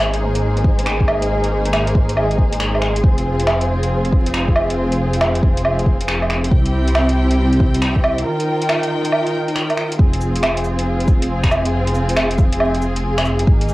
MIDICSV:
0, 0, Header, 1, 5, 480
1, 0, Start_track
1, 0, Key_signature, -4, "minor"
1, 0, Tempo, 434783
1, 1432, Time_signature, 4, 2, 24, 8
1, 15167, End_track
2, 0, Start_track
2, 0, Title_t, "Synth texture"
2, 0, Program_c, 0, 99
2, 0, Note_on_c, 0, 72, 84
2, 11045, Note_off_c, 0, 72, 0
2, 15167, End_track
3, 0, Start_track
3, 0, Title_t, "String section"
3, 0, Program_c, 1, 48
3, 0, Note_on_c, 1, 58, 78
3, 0, Note_on_c, 1, 63, 69
3, 0, Note_on_c, 1, 68, 80
3, 3311, Note_off_c, 1, 58, 0
3, 3312, Note_off_c, 1, 63, 0
3, 3349, Note_on_c, 1, 65, 68
3, 3353, Note_on_c, 1, 60, 73
3, 7147, Note_off_c, 1, 68, 0
3, 7152, Note_off_c, 1, 65, 0
3, 7154, Note_off_c, 1, 60, 0
3, 7186, Note_on_c, 1, 67, 72
3, 7187, Note_on_c, 1, 64, 71
3, 7187, Note_on_c, 1, 79, 84
3, 7188, Note_on_c, 1, 48, 76
3, 7190, Note_on_c, 1, 60, 70
3, 9090, Note_off_c, 1, 48, 0
3, 9090, Note_off_c, 1, 64, 0
3, 9090, Note_off_c, 1, 67, 0
3, 9090, Note_off_c, 1, 79, 0
3, 9092, Note_off_c, 1, 60, 0
3, 9107, Note_on_c, 1, 51, 74
3, 9109, Note_on_c, 1, 79, 88
3, 9110, Note_on_c, 1, 63, 73
3, 9110, Note_on_c, 1, 65, 68
3, 9111, Note_on_c, 1, 70, 73
3, 11010, Note_off_c, 1, 51, 0
3, 11011, Note_off_c, 1, 79, 0
3, 11012, Note_off_c, 1, 63, 0
3, 11012, Note_off_c, 1, 65, 0
3, 11012, Note_off_c, 1, 70, 0
3, 11035, Note_on_c, 1, 65, 69
3, 11036, Note_on_c, 1, 68, 83
3, 11037, Note_on_c, 1, 60, 77
3, 14835, Note_off_c, 1, 65, 0
3, 14836, Note_off_c, 1, 60, 0
3, 14874, Note_on_c, 1, 58, 79
3, 14875, Note_on_c, 1, 63, 71
3, 15167, Note_off_c, 1, 58, 0
3, 15167, Note_off_c, 1, 63, 0
3, 15167, Note_off_c, 1, 68, 0
3, 15167, End_track
4, 0, Start_track
4, 0, Title_t, "Detuned saw bass"
4, 0, Program_c, 2, 39
4, 0, Note_on_c, 2, 32, 87
4, 3335, Note_off_c, 2, 32, 0
4, 3352, Note_on_c, 2, 29, 89
4, 7175, Note_off_c, 2, 29, 0
4, 7190, Note_on_c, 2, 36, 89
4, 9095, Note_off_c, 2, 36, 0
4, 11028, Note_on_c, 2, 29, 92
4, 14853, Note_off_c, 2, 29, 0
4, 14874, Note_on_c, 2, 32, 89
4, 15167, Note_off_c, 2, 32, 0
4, 15167, End_track
5, 0, Start_track
5, 0, Title_t, "Drums"
5, 150, Note_on_c, 9, 42, 47
5, 261, Note_off_c, 9, 42, 0
5, 390, Note_on_c, 9, 42, 56
5, 501, Note_off_c, 9, 42, 0
5, 630, Note_on_c, 9, 42, 31
5, 713, Note_on_c, 9, 36, 108
5, 741, Note_off_c, 9, 42, 0
5, 823, Note_off_c, 9, 36, 0
5, 872, Note_on_c, 9, 42, 57
5, 952, Note_on_c, 9, 26, 113
5, 982, Note_off_c, 9, 42, 0
5, 1062, Note_off_c, 9, 26, 0
5, 1111, Note_on_c, 9, 36, 61
5, 1192, Note_on_c, 9, 77, 64
5, 1221, Note_off_c, 9, 36, 0
5, 1303, Note_off_c, 9, 77, 0
5, 1351, Note_on_c, 9, 42, 54
5, 1461, Note_off_c, 9, 42, 0
5, 1588, Note_on_c, 9, 42, 41
5, 1699, Note_off_c, 9, 42, 0
5, 1827, Note_on_c, 9, 42, 52
5, 1910, Note_on_c, 9, 26, 104
5, 1910, Note_on_c, 9, 77, 61
5, 1938, Note_off_c, 9, 42, 0
5, 2021, Note_off_c, 9, 26, 0
5, 2021, Note_off_c, 9, 77, 0
5, 2068, Note_on_c, 9, 42, 45
5, 2153, Note_on_c, 9, 36, 105
5, 2178, Note_off_c, 9, 42, 0
5, 2263, Note_off_c, 9, 36, 0
5, 2309, Note_on_c, 9, 42, 54
5, 2394, Note_on_c, 9, 77, 47
5, 2420, Note_off_c, 9, 42, 0
5, 2505, Note_off_c, 9, 77, 0
5, 2550, Note_on_c, 9, 42, 31
5, 2633, Note_on_c, 9, 36, 62
5, 2660, Note_off_c, 9, 42, 0
5, 2744, Note_off_c, 9, 36, 0
5, 2788, Note_on_c, 9, 42, 54
5, 2870, Note_on_c, 9, 26, 108
5, 2898, Note_off_c, 9, 42, 0
5, 2980, Note_off_c, 9, 26, 0
5, 3032, Note_on_c, 9, 77, 33
5, 3110, Note_on_c, 9, 26, 63
5, 3142, Note_off_c, 9, 77, 0
5, 3220, Note_off_c, 9, 26, 0
5, 3268, Note_on_c, 9, 42, 51
5, 3353, Note_on_c, 9, 36, 121
5, 3379, Note_off_c, 9, 42, 0
5, 3463, Note_off_c, 9, 36, 0
5, 3510, Note_on_c, 9, 42, 41
5, 3620, Note_off_c, 9, 42, 0
5, 3750, Note_on_c, 9, 42, 53
5, 3831, Note_on_c, 9, 26, 103
5, 3831, Note_on_c, 9, 77, 60
5, 3860, Note_off_c, 9, 42, 0
5, 3941, Note_off_c, 9, 26, 0
5, 3941, Note_off_c, 9, 77, 0
5, 3988, Note_on_c, 9, 42, 43
5, 4098, Note_off_c, 9, 42, 0
5, 4229, Note_on_c, 9, 42, 53
5, 4339, Note_off_c, 9, 42, 0
5, 4470, Note_on_c, 9, 42, 29
5, 4554, Note_on_c, 9, 36, 99
5, 4580, Note_off_c, 9, 42, 0
5, 4664, Note_off_c, 9, 36, 0
5, 4708, Note_on_c, 9, 42, 53
5, 4790, Note_on_c, 9, 26, 100
5, 4818, Note_off_c, 9, 42, 0
5, 4901, Note_off_c, 9, 26, 0
5, 4951, Note_on_c, 9, 36, 57
5, 5031, Note_on_c, 9, 77, 61
5, 5061, Note_off_c, 9, 36, 0
5, 5141, Note_off_c, 9, 77, 0
5, 5191, Note_on_c, 9, 42, 50
5, 5301, Note_off_c, 9, 42, 0
5, 5432, Note_on_c, 9, 42, 42
5, 5543, Note_off_c, 9, 42, 0
5, 5668, Note_on_c, 9, 42, 53
5, 5752, Note_on_c, 9, 26, 96
5, 5752, Note_on_c, 9, 77, 63
5, 5779, Note_off_c, 9, 42, 0
5, 5862, Note_off_c, 9, 26, 0
5, 5862, Note_off_c, 9, 77, 0
5, 5910, Note_on_c, 9, 42, 43
5, 5992, Note_on_c, 9, 36, 98
5, 6020, Note_off_c, 9, 42, 0
5, 6103, Note_off_c, 9, 36, 0
5, 6152, Note_on_c, 9, 42, 53
5, 6235, Note_on_c, 9, 77, 49
5, 6262, Note_off_c, 9, 42, 0
5, 6345, Note_off_c, 9, 77, 0
5, 6393, Note_on_c, 9, 42, 29
5, 6472, Note_on_c, 9, 36, 55
5, 6504, Note_off_c, 9, 42, 0
5, 6582, Note_off_c, 9, 36, 0
5, 6632, Note_on_c, 9, 42, 53
5, 6714, Note_on_c, 9, 26, 103
5, 6742, Note_off_c, 9, 42, 0
5, 6825, Note_off_c, 9, 26, 0
5, 6871, Note_on_c, 9, 77, 35
5, 6954, Note_on_c, 9, 26, 59
5, 6981, Note_off_c, 9, 77, 0
5, 7065, Note_off_c, 9, 26, 0
5, 7113, Note_on_c, 9, 42, 50
5, 7192, Note_on_c, 9, 36, 109
5, 7224, Note_off_c, 9, 42, 0
5, 7302, Note_off_c, 9, 36, 0
5, 7348, Note_on_c, 9, 42, 42
5, 7459, Note_off_c, 9, 42, 0
5, 7590, Note_on_c, 9, 42, 52
5, 7672, Note_on_c, 9, 26, 97
5, 7672, Note_on_c, 9, 77, 66
5, 7701, Note_off_c, 9, 42, 0
5, 7782, Note_off_c, 9, 26, 0
5, 7782, Note_off_c, 9, 77, 0
5, 7827, Note_on_c, 9, 42, 44
5, 7937, Note_off_c, 9, 42, 0
5, 8065, Note_on_c, 9, 42, 55
5, 8175, Note_off_c, 9, 42, 0
5, 8307, Note_on_c, 9, 42, 31
5, 8390, Note_on_c, 9, 36, 96
5, 8417, Note_off_c, 9, 42, 0
5, 8500, Note_off_c, 9, 36, 0
5, 8549, Note_on_c, 9, 42, 54
5, 8631, Note_on_c, 9, 26, 99
5, 8660, Note_off_c, 9, 42, 0
5, 8741, Note_off_c, 9, 26, 0
5, 8788, Note_on_c, 9, 36, 56
5, 8873, Note_on_c, 9, 77, 69
5, 8898, Note_off_c, 9, 36, 0
5, 8983, Note_off_c, 9, 77, 0
5, 9033, Note_on_c, 9, 42, 50
5, 9143, Note_off_c, 9, 42, 0
5, 9271, Note_on_c, 9, 42, 45
5, 9381, Note_off_c, 9, 42, 0
5, 9511, Note_on_c, 9, 42, 56
5, 9592, Note_on_c, 9, 26, 99
5, 9592, Note_on_c, 9, 77, 68
5, 9621, Note_off_c, 9, 42, 0
5, 9703, Note_off_c, 9, 26, 0
5, 9703, Note_off_c, 9, 77, 0
5, 9749, Note_on_c, 9, 42, 45
5, 9859, Note_off_c, 9, 42, 0
5, 9987, Note_on_c, 9, 42, 58
5, 10071, Note_on_c, 9, 77, 54
5, 10098, Note_off_c, 9, 42, 0
5, 10181, Note_off_c, 9, 77, 0
5, 10229, Note_on_c, 9, 42, 31
5, 10339, Note_off_c, 9, 42, 0
5, 10468, Note_on_c, 9, 42, 57
5, 10550, Note_on_c, 9, 26, 99
5, 10578, Note_off_c, 9, 42, 0
5, 10661, Note_off_c, 9, 26, 0
5, 10708, Note_on_c, 9, 42, 31
5, 10708, Note_on_c, 9, 77, 37
5, 10791, Note_on_c, 9, 26, 58
5, 10818, Note_off_c, 9, 42, 0
5, 10818, Note_off_c, 9, 77, 0
5, 10901, Note_off_c, 9, 26, 0
5, 10950, Note_on_c, 9, 42, 56
5, 11030, Note_on_c, 9, 36, 123
5, 11060, Note_off_c, 9, 42, 0
5, 11140, Note_off_c, 9, 36, 0
5, 11188, Note_on_c, 9, 42, 46
5, 11270, Note_on_c, 9, 69, 74
5, 11298, Note_off_c, 9, 42, 0
5, 11381, Note_off_c, 9, 69, 0
5, 11433, Note_on_c, 9, 42, 59
5, 11513, Note_on_c, 9, 26, 105
5, 11513, Note_on_c, 9, 77, 68
5, 11543, Note_off_c, 9, 42, 0
5, 11624, Note_off_c, 9, 26, 0
5, 11624, Note_off_c, 9, 77, 0
5, 11671, Note_on_c, 9, 42, 48
5, 11753, Note_on_c, 9, 69, 65
5, 11782, Note_off_c, 9, 42, 0
5, 11863, Note_off_c, 9, 69, 0
5, 11910, Note_on_c, 9, 42, 60
5, 12021, Note_off_c, 9, 42, 0
5, 12148, Note_on_c, 9, 42, 34
5, 12230, Note_on_c, 9, 36, 103
5, 12230, Note_on_c, 9, 69, 73
5, 12259, Note_off_c, 9, 42, 0
5, 12340, Note_off_c, 9, 69, 0
5, 12341, Note_off_c, 9, 36, 0
5, 12390, Note_on_c, 9, 42, 60
5, 12500, Note_off_c, 9, 42, 0
5, 12626, Note_on_c, 9, 26, 101
5, 12628, Note_on_c, 9, 36, 61
5, 12712, Note_on_c, 9, 69, 66
5, 12712, Note_on_c, 9, 77, 68
5, 12737, Note_off_c, 9, 26, 0
5, 12739, Note_off_c, 9, 36, 0
5, 12822, Note_off_c, 9, 69, 0
5, 12822, Note_off_c, 9, 77, 0
5, 12868, Note_on_c, 9, 42, 56
5, 12978, Note_off_c, 9, 42, 0
5, 13108, Note_on_c, 9, 42, 48
5, 13189, Note_on_c, 9, 69, 71
5, 13219, Note_off_c, 9, 42, 0
5, 13299, Note_off_c, 9, 69, 0
5, 13349, Note_on_c, 9, 42, 60
5, 13431, Note_on_c, 9, 26, 106
5, 13431, Note_on_c, 9, 77, 66
5, 13459, Note_off_c, 9, 42, 0
5, 13541, Note_off_c, 9, 26, 0
5, 13541, Note_off_c, 9, 77, 0
5, 13588, Note_on_c, 9, 42, 50
5, 13669, Note_on_c, 9, 69, 60
5, 13673, Note_on_c, 9, 36, 108
5, 13699, Note_off_c, 9, 42, 0
5, 13780, Note_off_c, 9, 69, 0
5, 13784, Note_off_c, 9, 36, 0
5, 13828, Note_on_c, 9, 42, 62
5, 13911, Note_on_c, 9, 77, 53
5, 13938, Note_off_c, 9, 42, 0
5, 14021, Note_off_c, 9, 77, 0
5, 14070, Note_on_c, 9, 42, 33
5, 14150, Note_on_c, 9, 69, 68
5, 14180, Note_off_c, 9, 42, 0
5, 14260, Note_off_c, 9, 69, 0
5, 14309, Note_on_c, 9, 42, 59
5, 14420, Note_off_c, 9, 42, 0
5, 14549, Note_on_c, 9, 26, 104
5, 14549, Note_on_c, 9, 77, 36
5, 14632, Note_on_c, 9, 69, 66
5, 14659, Note_off_c, 9, 26, 0
5, 14659, Note_off_c, 9, 77, 0
5, 14742, Note_off_c, 9, 69, 0
5, 14785, Note_on_c, 9, 42, 59
5, 14874, Note_on_c, 9, 36, 125
5, 14895, Note_off_c, 9, 42, 0
5, 14984, Note_off_c, 9, 36, 0
5, 15027, Note_on_c, 9, 42, 45
5, 15110, Note_on_c, 9, 69, 71
5, 15138, Note_off_c, 9, 42, 0
5, 15167, Note_off_c, 9, 69, 0
5, 15167, End_track
0, 0, End_of_file